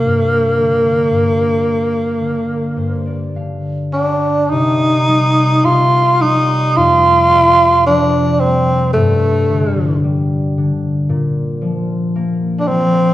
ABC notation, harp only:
X:1
M:4/4
L:1/16
Q:1/4=55
K:Gm
V:1 name="Harp"
z8 z2 c d f2 g2 | z16 | z16 |]
V:2 name="Harp" clef=bass
G,,2 D,2 G,,4 D,2 G,,2 D,4 | C,2 G,2 C,2 G,2 F,,2 C,2 F,2 G,2 | G,,2 D,2 G,2 D,2 B,,2 F,2 B,2 F,2 |]